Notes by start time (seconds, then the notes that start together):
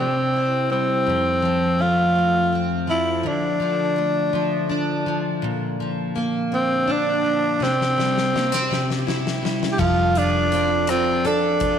Already playing: C3
0.00 C4
0.33 E4
0.70 G3 C4
1.07 F2
1.42 F3
1.79 A3 F4
2.16 C3
2.52 C4
2.87 F3 E4
3.23 D3 D4
3.60 F3
3.96 A3
4.33 F3
4.69 D4
5.06 F3
5.42 A#2
5.80 F3
6.16 A#3
6.52 D3 C4
6.88 D4
6.92 D4
7.24 F3
7.60 C3 C4, snare
7.81 snare
7.97 G3, snare
8.18 snare
8.34 A#3, snare
8.52 C4, snare
8.71 C3, snare
8.90 snare
9.07 E4, snare
9.27 snare
9.43 G3, snare
9.63 snare
9.72 G4
9.78 F1 F3 F4 A4, kick, crash
10.15 D4 F4, closed hi-hat
10.52 C4, closed hi-hat
10.87 C4 F4, cross-stick, closed hi-hat
11.25 D4 A4, closed hi-hat
11.60 F4, kick, closed hi-hat